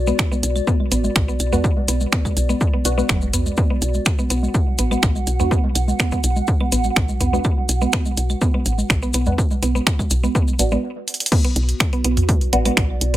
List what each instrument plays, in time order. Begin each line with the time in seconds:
Already playing: fm bass B1, ambient pad B3 F#4 B4 D5
0.07 synth arpeggio sound B3, high conga, maracas
0.19 finger snap, kick, maracas
0.31 synth arpeggio sound B3, high conga, maracas
0.43 fm bass B1, closed hi-hat, maracas
0.56 high conga, claves, maracas
0.67 synth arpeggio sound B3, kick, maracas
0.80 high conga
0.92 fm bass A1, synth arpeggio sound B3, closed hi-hat, maracas
1.04 high conga, maracas
1.16 fm bass B1, finger snap, kick, maracas
1.28 synth arpeggio sound B3, high conga, maracas
1.40 fm bass B1, closed hi-hat, claves, maracas
1.52 synth arpeggio sound B3, synth stab B3 D4 F#4, mid tom, high conga, maracas
1.64 kick, maracas
1.77 high conga
1.88 fm bass B1, synth arpeggio sound B3, closed hi-hat, maracas
2.01 high conga, maracas
2.12 synth arpeggio sound B3, finger snap, kick, maracas
2.25 kick, high conga, claves, maracas
2.37 fm bass B1, closed hi-hat, maracas
2.49 synth arpeggio sound B3, high conga, maracas
2.61 kick, maracas
2.73 synth arpeggio sound B3, high conga
2.85 fm bass B1, synth stab B3 D4 F#4, closed hi-hat, maracas
2.98 synth arpeggio sound B3, synth stab B3 D4 F#4, high conga, maracas
3.09 fm bass F#1, synth arpeggio sound F#3, finger snap, kick, claves, maracas
3.21 high conga, maracas
3.33 fm bass B1, synth arpeggio sound B3, closed hi-hat, mid tom, maracas
3.46 high conga, maracas
3.57 synth arpeggio sound B3, kick, maracas
3.70 synth arpeggio sound B3, high conga
3.82 fm bass B1, closed hi-hat, maracas
3.94 high conga, maracas
3.99 ambient pad F#5
4.06 finger snap, kick, claves, maracas
4.19 synth arpeggio sound B3, high conga, maracas
4.30 fm bass B1, synth arpeggio sound B3, closed hi-hat, maracas
4.43 high conga, maracas
4.54 kick, maracas
4.67 high conga
4.78 fm bass A1, synth arpeggio sound B3, closed hi-hat, maracas
4.91 synth arpeggio sound B3, high conga, claves, maracas
5.03 fm bass B1, finger snap, kick, maracas
5.15 high conga, maracas
5.27 fm bass B1, closed hi-hat, maracas
5.40 synth stab B3 D4 F#4, synth arpeggio sound B3, mid tom, high conga, maracas
5.51 synth arpeggio sound B3, kick, maracas
5.64 high conga
5.75 fm bass B1, closed hi-hat, claves, maracas
5.88 high conga, maracas
5.99 synth arpeggio sound B3, finger snap, kick, maracas
6.12 synth arpeggio sound B3, kick, high conga, maracas
6.24 fm bass B1, closed hi-hat, maracas
6.36 high conga, maracas
6.47 kick, maracas
6.60 synth arpeggio sound B3, high conga, claves
6.72 fm bass A1, synth arpeggio sound B3, closed hi-hat, maracas
6.84 high conga, maracas
6.96 fm bass B1, finger snap, kick, maracas
7.09 high conga, maracas
7.20 fm bass B1, synth arpeggio sound B3, closed hi-hat, mid tom, maracas
7.33 synth arpeggio sound B3, synth stab B3 D4 F#4, high conga, maracas
7.44 kick, claves, maracas
7.57 high conga
7.69 fm bass B1, closed hi-hat, maracas
7.81 synth arpeggio sound B3, high conga, maracas
7.92 synth arpeggio sound B3, finger snap, kick, maracas
8.05 high conga, maracas
8.17 fm bass B1, closed hi-hat, maracas
8.30 high conga, claves, maracas
8.41 synth arpeggio sound B3, kick, maracas
8.54 synth arpeggio sound B3, high conga
8.65 fm bass A1, closed hi-hat, maracas
8.78 high conga, maracas
8.90 fm bass B1, finger snap, kick, maracas
9.02 synth arpeggio sound B3, high conga, maracas
9.13 fm bass B1, synth arpeggio sound B3, closed hi-hat, claves, maracas
9.26 synth stab B3 D4 F#4, mid tom, high conga, maracas
9.38 kick, maracas
9.51 high conga, maracas
9.62 fm bass B1, synth arpeggio sound B3, closed hi-hat, maracas
9.75 synth arpeggio sound B3, high conga, maracas
9.87 finger snap, kick, maracas
9.99 kick, high conga, claves, maracas
10.10 fm bass B1, closed hi-hat, maracas
10.23 synth arpeggio sound B3, high conga, maracas
10.35 synth arpeggio sound B3, kick, maracas
10.48 high conga, maracas
10.59 fm bass A1, synth stab B3 D4 F#4, closed hi-hat, maracas
10.71 synth stab B3 D4 F#4, synth arpeggio sound B3, high conga, maracas
11.08 closed hi-hat
11.14 closed hi-hat
11.20 closed hi-hat
11.26 closed hi-hat
11.32 ambient pad B3, synth arpeggio sound B3, kick, closed hi-hat, crash
11.38 ambient pad F#4
11.43 synth arpeggio sound B3, ambient pad B4, closed hi-hat
11.56 fm bass B1, closed hi-hat
11.69 closed hi-hat
11.80 finger snap, kick, closed hi-hat, claves
11.93 synth arpeggio sound B3, closed hi-hat
12.04 fm bass B1, synth arpeggio sound B3, closed hi-hat
12.17 closed hi-hat, mid tom
12.29 kick, closed hi-hat, high conga
12.36 ambient pad D5
12.41 closed hi-hat
12.53 fm bass A1, synth stab B3 D4 F#4, synth arpeggio sound B3, closed hi-hat
12.65 synth stab B3 D4 F#4, synth arpeggio sound B3, closed hi-hat, high conga, claves
12.77 fm bass B1, finger snap, kick, closed hi-hat
13.01 fm bass B1, closed hi-hat
13.14 synth arpeggio sound B3, closed hi-hat, mid tom